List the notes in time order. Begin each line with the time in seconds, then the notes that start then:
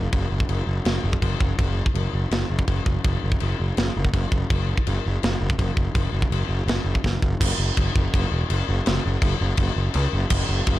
0.13 F#1, kick, china
0.30 F#1
0.40 kick
0.49 F#1, china
0.67 F#1
0.85 F#1, snare, china
1.04 F#1
1.13 kick
1.22 F#1, kick, china
1.40 F#1, kick
1.58 F#1, kick, china
1.86 kick
1.95 F#1, china
2.13 F#1
2.31 F#1, snare, china
2.50 F#1
2.59 kick
2.68 F#1, kick, china
2.86 F#1, kick
3.04 F#1, kick, china
3.24 F#1
3.32 kick
3.40 F#1, china
3.60 F#1
3.77 F#1, snare, china
3.97 F#1
4.05 kick
4.13 F#1, kick, china
4.32 F#1, kick
4.50 F#1, kick, china
4.77 kick
4.87 F#1, china
5.06 F#1
5.23 F#1, snare, china
5.41 F#1
5.50 kick
5.58 F#1, kick, china
5.77 F#1, kick
5.94 F#1, kick, china
6.12 F#1
6.22 kick
6.30 F#1, china
6.49 F#1
6.66 F#1, snare, china
6.85 F#1
6.95 kick
7.04 F#1, kick, snare
7.22 F#1, kick
7.40 F#1, kick, crash, china
7.58 F#1
7.77 F#1, kick, china
7.95 F#1, kick
8.14 F#1, kick, china
8.32 E1
8.50 F#1, china
8.69 F#1
8.86 F#1, snare, china
9.06 F#1
9.22 F#1, kick, china
9.41 F#1
9.57 F#1, kick, china
9.76 F#1
9.94 C#2, china
10.13 F#1
10.30 F#1, kick, crash, china
10.49 F#1
10.67 F#1, kick, china